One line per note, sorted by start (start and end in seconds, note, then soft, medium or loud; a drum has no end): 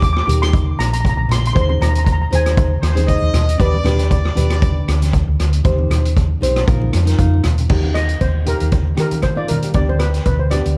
0.00 0.20 D#2 medium
0.00 0.11 D6 medium
0.00 kick medium
0.00 closed hi-hat medium
0.13 0.18 D6 medium
0.13 cross-stick medium
0.19 0.25 D6 medium
0.26 0.71 D#2 medium
0.26 0.89 D#4 medium
0.26 0.90 G4 medium
0.26 0.90 A#4 medium
0.26 0.33 D6 medium
0.26 closed hi-hat loud
0.26 low conga medium
0.42 0.80 C6 loud
0.42 cross-stick medium
0.42 closed hi-hat medium
0.53 kick loud
0.53 closed hi-hat medium
0.79 1.12 A#1 loud
0.79 0.85 A#5 loud
0.79 cross-stick medium
0.79 closed hi-hat medium
0.86 0.92 A#5 medium
0.93 0.99 A#5 medium
0.93 closed hi-hat medium
1.01 1.08 A#5 medium
1.05 kick medium
1.05 closed hi-hat medium
1.09 1.16 A#5 medium
1.17 1.28 A#1 loud
1.17 1.23 A#5 medium
1.28 1.51 A#1 medium
1.28 1.37 C6 medium
1.28 cross-stick medium
1.28 closed hi-hat loud
1.28 low conga medium
1.38 1.46 C6 medium
1.45 1.52 C6 medium
1.45 closed hi-hat medium
1.53 1.77 D#2 loud
1.53 2.01 D#4 medium
1.53 2.01 G#4 medium
1.53 2.02 C5 medium
1.53 1.60 C6 medium
1.53 kick loud
1.53 closed hi-hat medium
1.61 1.68 C6 medium
1.69 1.76 C6 medium
1.69 high conga medium
1.81 2.24 D#2 medium
1.81 1.88 A#5 medium
1.81 cross-stick medium
1.81 closed hi-hat medium
1.81 high conga medium
1.81 low conga medium
1.89 1.97 A#5 medium
1.95 2.03 A#5 medium
1.95 closed hi-hat medium
2.05 2.11 A#5 medium
2.05 kick medium
2.05 closed hi-hat medium
2.12 2.20 A#5 medium
2.22 2.27 A#5 medium
2.31 2.76 D#2 medium
2.31 2.71 D#4 medium
2.31 2.71 G#4 medium
2.31 2.71 C5 medium
2.31 closed hi-hat medium
2.31 low conga medium
2.35 3.06 G#5 medium
2.46 cross-stick medium
2.46 closed hi-hat medium
2.57 kick loud
2.57 closed hi-hat medium
2.82 3.16 D#2 medium
2.82 3.06 C5 loud
2.82 cross-stick medium
2.82 closed hi-hat medium
2.95 3.33 D#4 loud
2.95 3.34 G#4 medium
2.95 3.34 C5 medium
2.95 closed hi-hat medium
2.95 high conga medium
3.07 3.56 D#5 loud
3.07 kick medium
3.07 closed hi-hat medium
3.22 3.32 D#2 medium
3.33 3.56 D#2 medium
3.33 cross-stick medium
3.33 closed hi-hat medium
3.33 low conga medium
3.49 closed hi-hat medium
3.58 3.81 D#2 loud
3.58 3.75 D4 medium
3.58 3.76 G4 medium
3.58 3.76 B4 medium
3.58 4.09 D5 loud
3.58 kick loud
3.58 closed hi-hat medium
3.74 high conga medium
3.84 4.29 D#2 medium
3.84 4.16 D4 medium
3.84 4.17 G4 medium
3.84 4.17 B4 loud
3.84 cross-stick medium
3.84 closed hi-hat medium
3.84 high conga medium
3.84 low conga medium
3.99 closed hi-hat medium
4.10 5.09 D5 loud
4.10 kick medium
4.10 closed hi-hat medium
4.25 cross-stick medium
4.35 4.80 D#2 medium
4.35 4.98 D4 medium
4.35 4.99 G4 medium
4.35 4.99 B4 loud
4.35 closed hi-hat medium
4.35 low conga medium
4.50 cross-stick medium
4.50 closed hi-hat medium
4.62 kick loud
4.62 closed hi-hat medium
4.88 5.22 D2 loud
4.88 cross-stick medium
4.88 closed hi-hat medium
5.02 closed hi-hat medium
5.02 high conga medium
5.13 kick medium
5.13 closed hi-hat medium
5.28 5.37 D2 loud
5.39 5.61 D2 loud
5.39 cross-stick medium
5.39 closed hi-hat medium
5.53 closed hi-hat medium
5.64 5.87 D#2 loud
5.64 6.11 D#4 medium
5.64 6.11 G4 medium
5.64 6.11 C5 medium
5.64 kick loud
5.64 closed hi-hat medium
5.79 high conga medium
5.90 6.34 D#2 medium
5.90 cross-stick medium
5.90 closed hi-hat medium
5.90 low conga medium
6.05 closed hi-hat medium
6.17 kick medium
6.17 closed hi-hat medium
6.41 6.64 B1 loud
6.41 6.64 D#4 medium
6.41 6.66 G4 medium
6.41 6.67 C5 medium
6.41 closed hi-hat loud
6.41 low conga medium
6.56 cross-stick medium
6.56 closed hi-hat medium
6.66 6.89 A#1 loud
6.66 6.97 D#4 medium
6.66 6.98 F4 medium
6.66 6.98 A#4 loud
6.66 kick loud
6.66 closed hi-hat medium
6.66 high conga medium
6.82 high conga medium
6.93 7.15 F2 loud
6.93 cross-stick medium
6.93 closed hi-hat medium
7.05 7.43 D#4 medium
7.05 7.44 F4 medium
7.05 7.44 A#4 loud
7.05 closed hi-hat medium
7.18 7.42 F2 medium
7.18 7.66 F5 medium
7.18 kick medium
7.18 closed hi-hat medium
7.18 high conga medium
7.34 high conga medium
7.44 7.67 D#2 medium
7.44 cross-stick medium
7.44 closed hi-hat medium
7.44 low conga medium
7.58 closed hi-hat medium
7.58 low conga medium
7.68 8.14 D#2 loud
7.68 8.15 A#3 medium
7.68 8.16 D#4 medium
7.68 8.16 G4 medium
7.68 kick loud
7.68 crash medium
7.84 high conga medium
7.94 8.19 D#5 loud
7.94 cross-stick medium
7.94 closed hi-hat medium
8.09 closed hi-hat medium
8.21 8.55 D#2 medium
8.21 8.47 C5 medium
8.21 kick medium
8.21 closed hi-hat medium
8.21 low conga medium
8.45 8.77 A#3 medium
8.45 8.77 D#4 medium
8.45 8.78 G4 medium
8.45 8.99 A#4 medium
8.45 closed hi-hat medium
8.45 low conga medium
8.60 8.93 D#2 medium
8.60 closed hi-hat medium
8.72 kick loud
8.72 closed hi-hat medium
8.95 9.42 D#3 medium
8.95 9.20 A#3 medium
8.95 9.20 D#4 medium
8.95 9.21 G4 medium
8.95 cross-stick medium
8.95 closed hi-hat medium
9.00 9.25 A#4 medium
9.11 closed hi-hat medium
9.11 high conga medium
9.22 9.37 C5 medium
9.22 kick medium
9.22 cross-stick medium
9.22 closed hi-hat medium
9.35 9.51 A#3 medium
9.35 9.51 D#4 medium
9.35 9.52 F4 medium
9.35 9.48 D5 medium
9.48 9.72 D#3 medium
9.48 9.73 A#4 medium
9.48 closed hi-hat medium
9.48 high conga medium
9.48 low conga medium
9.61 9.69 A#3 medium
9.61 9.70 D#4 medium
9.61 9.70 G4 medium
9.61 closed hi-hat medium
9.74 10.18 D2 loud
9.74 10.21 B3 medium
9.74 10.22 D4 medium
9.74 10.22 G4 medium
9.74 9.88 D5 medium
9.74 kick loud
9.74 closed hi-hat medium
9.89 9.94 C5 medium
9.89 high conga medium
9.99 10.25 B4 medium
9.99 cross-stick medium
9.99 closed hi-hat medium
10.14 closed hi-hat medium
10.25 10.60 D2 medium
10.25 10.39 B4 medium
10.25 kick medium
10.25 closed hi-hat medium
10.25 low conga medium
10.39 10.52 C5 medium
10.50 10.77 B3 medium
10.50 10.77 D4 medium
10.50 10.77 G4 medium
10.50 10.75 D5 medium
10.50 cross-stick medium
10.50 closed hi-hat medium
10.50 low conga medium
10.65 10.77 D2 medium
10.65 closed hi-hat medium